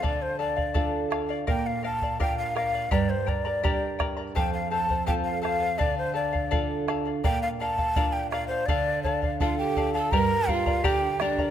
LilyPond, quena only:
\new Staff \with { instrumentName = "Quena" } { \time 2/4 \key d \minor \tempo 4 = 83 d''16 c''16 d''4 r8 | g''16 f''16 a''8 g''16 f''16 f''8 | d''16 c''16 d''4 r8 | g''16 f''16 a''8 g''16 f''16 f''8 |
d''16 c''16 d''4 r8 | g''16 f''16 a''8. g''16 f''16 c''16 | d''8 d''8 f''16 g''8 a''16 | bes''8 f''8 g''8 d''8 | }